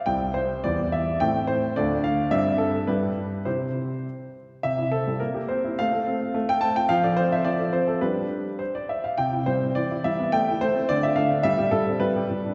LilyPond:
\new Staff \with { instrumentName = "Grand piano" } { \time 2/4 \key c \major \tempo 4 = 105 << { g''8 c''8 d''8 e''8 | g''8 c''8 d''8 f''8 | e''8 a'8 b'4 | c''4. r8 |
e''8 a'8 bes'8 c''8 | f''4~ f''16 g''16 a''16 g''16 | f''16 d''16 c''16 e''16 d''8 c''16 a'16 | b'4 c''16 d''16 e''16 f''16 |
g''8 c''8 d''8 e''8 | g''8 c''8 d''16 e''16 f''8 | e''8 a'8 b'4 | } \\ { <c, g c' e'>4 <e, g b e'>4 | <a, a c' e'>4 <d, a d' f'>4 | <g, g c' g'>4 <g, g d' g'>4 | <c e' g'>4 r4 |
c16 e'16 c'16 g16 bes16 g'16 c'16 e'16 | a16 a'16 c'16 f'16 a16 a'16 c'16 f'16 | f16 a'16 c'16 f'16 f16 a'16 c'16 f'16 | <g d' g'>4 r4 |
c16 e'16 g16 c'16 e16 e'16 g16 b16 | a16 e'16 a16 c'16 d16 f'16 a16 d'16 | g16 g'16 g16 c'16 g16 g'16 g16 d'16 | } >> }